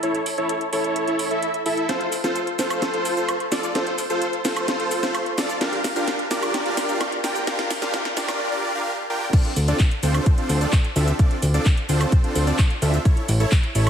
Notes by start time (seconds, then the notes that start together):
0.03 E4 A4 C#5, closed hi-hat
0.15 closed hi-hat
0.26 open hi-hat
0.38 E4 A4 C#5, closed hi-hat
0.49 closed hi-hat
0.61 closed hi-hat
0.73 E4 A4 C#5, open hi-hat
0.84 closed hi-hat
0.96 closed hi-hat
1.08 E4 A4 C#5, closed hi-hat
1.19 open hi-hat
1.31 E4 A4 E5, closed hi-hat
1.43 closed hi-hat
1.54 closed hi-hat
1.66 E4 A4 E5, open hi-hat
1.77 closed hi-hat
1.89 F4 A4 C5, snare, closed hi-hat, shaker
2.01 closed hi-hat
2.12 open hi-hat, shaker
2.24 F4 A4 C5, snare, closed hi-hat, shaker
2.36 closed hi-hat, shaker
2.47 closed hi-hat
2.59 F4 A4 C5, snare, open hi-hat, shaker
2.70 closed hi-hat, high woodblock, shaker
2.82 snare, closed hi-hat, shaker
2.94 F4 A4 C5, closed hi-hat
3.05 open hi-hat, shaker
3.17 F4 A4 C5, closed hi-hat, shaker
3.29 closed hi-hat, high woodblock, shaker
3.40 closed hi-hat
3.52 F4 A4 D5, snare, open hi-hat, shaker
3.63 closed hi-hat, shaker
3.75 F4 A4 C5, snare, closed hi-hat, shaker
3.87 closed hi-hat
3.98 open hi-hat, shaker
4.10 F4 A4 C5, closed hi-hat, shaker
4.22 closed hi-hat, shaker
4.33 closed hi-hat
4.45 F4 A4 C5, snare, open hi-hat, shaker
4.56 closed hi-hat, high woodblock, shaker
4.68 snare, closed hi-hat, shaker
4.80 F4 A4 C5, closed hi-hat
4.91 open hi-hat, shaker
5.03 F4 A4 C5, snare, closed hi-hat, shaker
5.15 closed hi-hat, high woodblock, shaker
5.26 closed hi-hat
5.38 F4 A4 D5, snare, open hi-hat, shaker
5.49 closed hi-hat, shaker
5.61 D4 F4 G4 A#4 F5, snare, closed hi-hat, shaker
5.73 closed hi-hat
5.84 snare, open hi-hat, shaker
5.96 D4 F4 G4 A#4 F5, closed hi-hat, shaker
6.08 snare, closed hi-hat, shaker
6.19 closed hi-hat
6.31 D4 F4 G4 A#4 D5, snare, open hi-hat, shaker
6.43 closed hi-hat, high woodblock, shaker
6.54 snare, closed hi-hat, shaker
6.66 D4 F4 G4 A#4 D5, closed hi-hat
6.77 snare, open hi-hat, shaker
6.89 D4 F4 G4 A#4 F5, closed hi-hat, shaker
7.01 snare, closed hi-hat, high woodblock, shaker
7.12 closed hi-hat
7.24 D4 F4 G4 A#4 G5, snare, open hi-hat, shaker
7.36 closed hi-hat, shaker
7.47 D4 F4 G4 A#4 F5, snare, closed hi-hat, shaker
7.59 snare, closed hi-hat
7.70 snare, open hi-hat, shaker
7.82 D4 F4 G4 A#4 F5, snare, closed hi-hat, shaker
7.94 snare, closed hi-hat, shaker
8.05 snare, closed hi-hat
8.17 D4 F4 G4 A#4 D5, snare, open hi-hat, shaker
8.28 snare, closed hi-hat, high woodblock, shaker
8.52 D4 F4 G4 A#4 D5
8.75 D4 F4 G4 A#4 F5
9.10 D4 F4 G4 A#4 G5
9.33 C4 D4 F4 A4 D5, kick, closed hi-hat, crash, shaker
9.45 closed hi-hat
9.56 D2, open hi-hat, shaker
9.68 C4 D4 F4 A4 D5, closed hi-hat, shaker
9.79 kick, clap, closed hi-hat, shaker
9.91 closed hi-hat
10.03 D2 C4 D4 F4 A4 C5, open hi-hat, shaker
10.15 closed hi-hat, high woodblock, shaker
10.26 kick, closed hi-hat, shaker
10.38 C4 D4 F4 A4 C5, closed hi-hat
10.49 D2, open hi-hat, shaker
10.61 C4 D4 F4 A4 D5, closed hi-hat, shaker
10.73 kick, clap, closed hi-hat, high woodblock, shaker
10.84 closed hi-hat
10.96 D2 C4 D4 F4 A4 E5, open hi-hat, shaker
11.08 closed hi-hat, shaker
11.19 C4 D4 F4 A4 D5, kick, closed hi-hat, shaker
11.31 closed hi-hat
11.42 D2, open hi-hat, shaker
11.54 C4 D4 F4 A4 D5, closed hi-hat, shaker
11.66 kick, clap, closed hi-hat, shaker
11.77 closed hi-hat
11.89 D2 C4 D4 F4 A4 C5, open hi-hat, shaker
12.01 closed hi-hat, high woodblock, shaker
12.12 kick, closed hi-hat, shaker
12.24 C4 D4 F4 A4 C5, closed hi-hat
12.35 D2, open hi-hat, shaker
12.47 C4 D4 F4 A4 D5, closed hi-hat, shaker
12.59 kick, clap, closed hi-hat, high woodblock, shaker
12.70 closed hi-hat
12.82 D2 C4 D4 F4 A4 E5, open hi-hat, shaker
12.94 closed hi-hat, shaker
13.05 C#5, kick, closed hi-hat, shaker
13.17 closed hi-hat
13.29 A1, open hi-hat, shaker
13.40 E4 A4 C#5, closed hi-hat, shaker
13.52 kick, clap, closed hi-hat, shaker
13.63 closed hi-hat
13.75 A1 E4 A4 C#5, open hi-hat, shaker
13.87 closed hi-hat, high woodblock, shaker